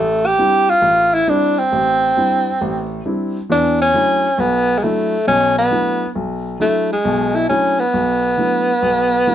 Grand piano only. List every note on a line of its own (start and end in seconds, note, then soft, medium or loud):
0.00 0.32 A1 medium
0.38 0.69 G3 soft
0.38 0.69 C4 soft
0.38 0.70 D4 soft
0.38 0.70 E4 medium
0.82 1.21 A1 medium
1.27 1.58 G3 soft
1.27 1.58 C4 soft
1.27 1.58 D4 soft
1.27 1.59 E4 medium
1.72 2.10 A1 medium
2.17 2.48 G3 soft
2.17 2.47 C4 soft
2.17 2.48 D4 soft
2.17 2.48 E4 medium
2.61 2.99 A1 medium
3.05 3.36 G3 soft
3.05 3.36 C4 soft
3.05 3.36 D4 soft
3.05 3.37 E4 soft
3.49 3.88 E2 medium
3.49 3.88 E3 medium
3.94 4.25 F#3 soft
3.94 4.25 A3 soft
3.94 4.25 D4 soft
3.94 4.25 E4 soft
4.38 4.77 B1 medium
4.83 5.14 F#3 soft
4.83 5.14 A3 soft
4.83 5.14 D4 soft
4.83 5.14 E4 medium
5.27 5.66 B1 medium
5.27 5.66 B2 medium
5.71 6.02 F#3 soft
5.71 6.03 A3 soft
5.71 6.03 D4 soft
5.71 6.03 E4 soft
6.15 6.54 B1 medium
6.60 6.91 F#3 medium
6.60 6.92 A3 soft
6.60 6.92 D4 soft
6.60 6.92 E4 medium
7.05 7.44 B1 medium
7.05 7.44 B2 medium
7.49 7.81 F#3 soft
7.49 7.81 A3 soft
7.49 7.81 D4 soft
7.49 7.81 E4 medium
7.94 8.33 B1 medium
8.37 8.69 F#3 soft
8.37 8.69 A3 soft
8.37 8.70 D4 soft
8.37 8.70 E4 soft
8.82 9.21 B1 medium
9.27 9.35 F#3 soft
9.27 9.35 A3 soft
9.27 9.35 D4 soft
9.27 9.35 E4 medium